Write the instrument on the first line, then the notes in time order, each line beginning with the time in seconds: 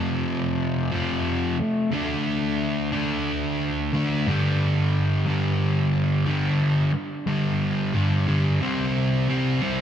distorted electric guitar
Already playing: F2 C3 F3 A3
0.91 F2 C3 F3
1.91 D3 A3 D4
2.92 D3 A3 D4
3.93 D3 A3 D4
4.26 G2 D3 G3
5.26 G2 D3 G3
6.26 G2 D3 G3
7.26 G2 D3 G3
7.94 G2 D3 G3
8.27 G2 D3 G3
8.61 C3 G3 C4
9.29 C3 G3 C4
9.62 C3 G3 C4